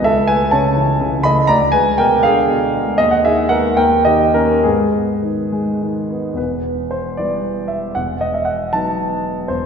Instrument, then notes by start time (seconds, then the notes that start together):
grand piano
0.02 C#2 A4 E5
0.28 A3 B4 G#5
0.51 C#3 C#5 A5
0.76 E3
1.01 C#3
1.23 A3 D#5 B5
1.47 D2 D5 A#5
1.72 G#3 B4 G#5
1.98 B2 A#4 G5
2.23 D3 G#4 F5
2.49 B2
2.75 G#3
2.98 D#2 D#5
3.11 F#5
3.25 D#3 G#4 E5
3.49 G#3 B3 A#4 F#5
3.77 D#2 A#4 G5
4.05 D#3 G4 D#5
4.34 A#3 C#4 A#4
4.63 G#2 B3 G#4
4.94 B3
5.23 D#3
5.52 G#3
5.82 D#3
6.10 B3
6.34 E2 B4
6.38 E1
6.91 C5
7.17 E3 G3 B3 D5
7.68 E5
7.95 E1 E2 F#5
8.21 D#5
8.34 E5
8.45 F#5
8.73 F#3 B3 D#4 A5
9.48 E1 E2 C5